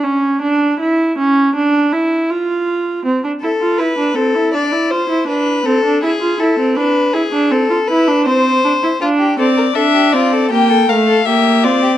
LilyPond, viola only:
\new Staff \with { instrumentName = "Viola" } { \time 4/4 \key a \phrygian \tempo 4 = 80 cis'8 d'8 e'8 cis'8 d'8 e'8 f'4 | c'16 d'16 e'16 f'16 e'16 d'16 c'16 e'16 d'16 e'16 f'16 e'16 d'8 c'16 d'16 | e'16 f'16 e'16 c'16 d'8 e'16 d'16 c'16 f'16 e'16 d'16 c'8 d'16 e'16 | d'8 c'8 d'8 c'8 bes8 a8 bes8 c'8 | }